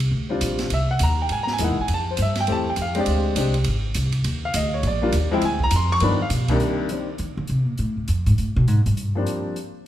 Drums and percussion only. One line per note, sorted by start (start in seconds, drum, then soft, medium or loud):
0.00 ride medium
0.41 hi-hat pedal medium
0.41 ride medium
0.59 snare soft
0.59 ride soft
0.70 ride medium
0.99 hi-hat pedal medium
0.99 ride medium
1.29 ride medium
1.47 snare medium
1.58 hi-hat pedal medium
1.58 ride medium
1.88 ride medium
2.17 hi-hat pedal medium
2.17 ride medium
2.35 snare soft
2.35 ride medium
2.47 ride medium
2.76 hi-hat pedal soft
2.76 ride medium
2.95 ride soft
3.06 ride medium
3.36 hi-hat pedal medium
3.36 ride medium
3.54 ride soft
3.64 ride medium
3.94 hi-hat pedal medium
3.94 ride medium
4.12 ride medium
4.24 ride medium
4.54 hi-hat pedal medium
4.54 ride medium
4.83 ride medium
5.12 hi-hat pedal medium
5.12 ride medium
5.42 ride medium
5.60 kick medium
5.71 hi-hat pedal medium
5.71 ride medium
6.00 ride medium
6.30 hi-hat pedal medium
6.30 ride medium
6.48 kick medium
6.48 ride medium
6.60 closed hi-hat soft
6.89 closed hi-hat soft
7.18 closed hi-hat soft
7.47 closed hi-hat soft
7.78 closed hi-hat soft
8.08 closed hi-hat soft
8.26 closed hi-hat soft
8.38 closed hi-hat soft
8.68 closed hi-hat soft
8.86 closed hi-hat soft
8.97 closed hi-hat soft
9.27 closed hi-hat soft
9.56 closed hi-hat soft